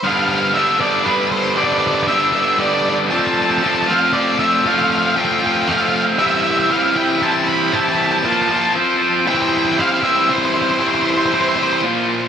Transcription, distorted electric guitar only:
\new Staff \with { instrumentName = "Distorted electric guitar" } { \time 3/4 \key c \major \tempo 4 = 117 <g, d g b d'>4 <g, d g b d'>8 <g, d g b d'>8 <g, d g b d'>4 | <g, d g b d'>4 <g, d g b d'>8 <g, d g b d'>8 <g, d g b d'>4 | <f a c' f'>4 <f a c' f'>8 <f a c' f'>8 <f a c' f'>4 | <f a c' f'>4 <f a c' f'>8 <f a c' f'>8 <f a c' f'>4 |
<e g c' e'>4 <e g c' e'>8 <e g c' e'>8 <e g c' e'>4 | <e g c' e'>4 <bes, f bes f'>8 <bes, f bes f'>8 <f c' f' c''>4 | <e g c' e' c''>4 <e g c' e' c''>8 <e g c' e' c''>8 <e g c' e' c''>4 | <e g c' e' c''>4 <e g c' e' c''>8 <e g c' e' c''>8 <bes, f bes f'>4 | }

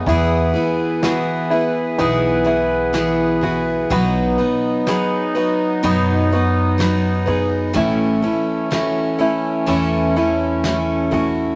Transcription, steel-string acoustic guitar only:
\new Staff \with { instrumentName = "Steel-string acoustic guitar" } { \time 4/4 \key b \mixolydian \tempo 4 = 62 <e b e' gis'>8 <b e' gis'>8 <e b e' gis'>8 <b e' gis'>8 <e b e' gis'>8 <b e' gis'>8 <e b e' gis'>8 <b e' gis'>8 | <b, fis b dis' b'>8 <b dis' b'>8 <fis b dis' b'>8 <b dis' b'>8 <b, fis b dis' b'>8 <b dis' b'>8 <fis b dis' b'>8 <b dis' b'>8 | <a, e a cis' e' a'>8 <a cis' e' a'>8 <a cis' e' a'>8 <a cis' e' a'>8 <a, e a cis' e' a'>8 <a cis' e' a'>8 <a cis' e' a'>8 <a cis' e' a'>8 | }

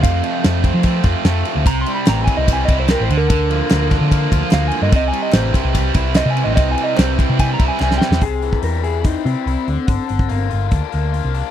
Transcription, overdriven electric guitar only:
\new Staff \with { instrumentName = "Overdriven electric guitar" } { \clef bass \time 4/4 \key c \mixolydian \tempo 4 = 147 <f, f a f'>8 a8 f8 c'8 a8 f'8 a8 f8 | c8 g8 e8 c'8 g8 e'8 g8 d8 | d8 bes8 d8 d'8 bes8 f'8 bes8 d8 | c8 g8 e8 c'8 g8 e'8 g8 e8 |
c8 g8 e8 c'8 g8 e'8 g8 e8 | c8 e8 g8 e'8 c'8 g8 e'8 d8 | d8 d8 bes8 f'8 d'8 bes8 f'8 d'8 | }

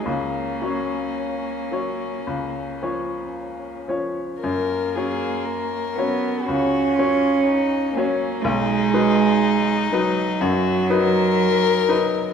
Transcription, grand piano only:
\new Staff \with { instrumentName = "Grand piano" } { \time 4/4 \key fis \major \tempo 4 = 60 cis,8 <fis cis' cis''>4 <fis cis' cis''>8 cis,8 <eis cis' cis''>4 <eis cis' cis''>8 | fis,8 <fis cis' cis''>4 <fis cis' cis''>8 cis,8 <fis cis' cis''>4 <fis cis' cis''>8 | b,,8 <fis dis' b'>4 <fis dis' b'>8 fis,8 <fis dis' b'>4 <fis dis' b'>8 | }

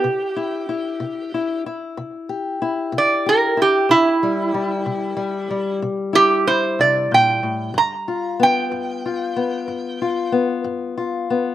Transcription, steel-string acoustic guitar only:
\new Staff \with { instrumentName = "Steel-string acoustic guitar" } { \time 12/8 \key c \major \tempo 4. = 62 << { r8 e'8 e'4 e'8 e'4 g'8 e'4 g'8 e'8 | r8 g8 g4 g8 g4 e'8 e'2 | r8 f'8 b4 f'8 b4 f'8 b4 f'8 b8 | } \\ { c4 r8 c4 r8 c4 r8 c4 r8 | c4 r8 c4 r8 c4 r8 c8 bes,8 a,8 | g,4 r8 g,4 r8 g,4 r8 g,4 r8 | } >> }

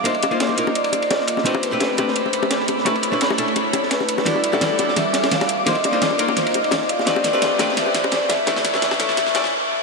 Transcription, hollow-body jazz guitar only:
\new Staff \with { instrumentName = "Hollow-body jazz guitar" } { \time 4/4 \key b \phrygian \tempo 4 = 171 <bes d' ees' f' c''>16 r8 <bes d' ees' f' c''>8. <bes d' ees' f' bes'>8 r2 | <a c' d' g' b'>8. <a c' d' g' b'>8. <a c' d' g' b'>8 r2 | <a cis' d' e' b'>16 r8 <a cis' d' e' b'>8. <a cis' d' e' a'>8 r2 | <g d' e' fis' a'>8. <g d' e' fis' a'>8. <g d' e' fis' a'>8 r2 |
<bes d' ees' f' c''>16 r8 <bes d' ees' f' c''>8. <bes d' ees' f' bes'>8 r2 | <a c' d' g' b'>8. <a c' d' g' b'>8. <a c' d' g' b'>8 r2 | <a cis' d' e' b'>16 r8 <a cis' d' e' b'>8. <a cis' d' e' a'>8 r8 <a cis' d' e' d''>8 r4 | }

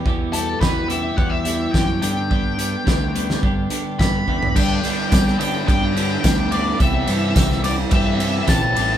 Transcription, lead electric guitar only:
\new Staff \with { instrumentName = "Lead electric guitar" } { \time 4/4 \key g \major \tempo 4 = 107 r8 a'8 b'8 e''8 fis''16 e''8. g''8 g''8~ | g''2. b''4 | g''4. g''8 g''4. d''8 | e''4. d''8 e''4 a''4 | }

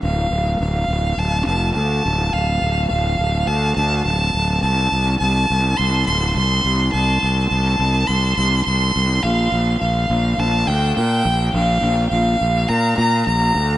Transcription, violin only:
\new Staff \with { instrumentName = "Violin" } { \time 4/4 \key d \minor \tempo 4 = 104 f''4 f''4 a''8 a''8 a''4 | f''4 f''4 a''8 a''8 a''4 | a''4 a''4 c'''8 c'''8 c'''4 | a''4 a''4 c'''8 c'''8 c'''4 |
f''4 f''4 a''8 g''8 g''4 | f''4 f''4 bes''8 bes''8 bes''4 | }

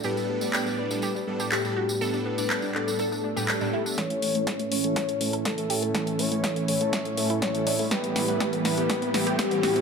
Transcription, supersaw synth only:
\new Staff \with { instrumentName = "Supersaw synth" } { \time 4/4 \key a \mixolydian \tempo 4 = 122 <a, g b d' a'>8. <a, g b d' d''>4 <a, g b d' a'>16 r8 <a, g b d' a'>8. <a, g b d' a'>16 r8 | <a, g b d' a'>8. <a, g b d' d''>4 <a, g b d' a'>16 r8. <a, g b d' b'>16 r16 <a, g b d' a'>16 r8 | <e a cis' a'>8. <e a cis' cis''>4 <e a cis' a'>16 r8 <e a cis' a'>8. <e a cis' a'>16 r8 | <e a cis' a'>8. <e a cis' cis''>4 <e a cis' a'>16 r8 <e a cis' a'>8. <e a cis' a'>16 r8 |
<e g b g'>8. <e g b b'>4 <e g b g'>16 r8 <e g b g'>8. <e g b g'>16 r8 | }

